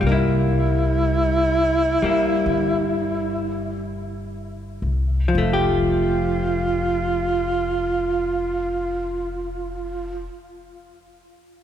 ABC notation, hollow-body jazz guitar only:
X:1
M:4/4
L:1/8
Q:"Swing" 1/4=38
K:F
V:1 name="Hollow-body jazz guitar"
[G,B,E]3 [G,B,E]4- [G,B,E] | [F,A,G]8 |]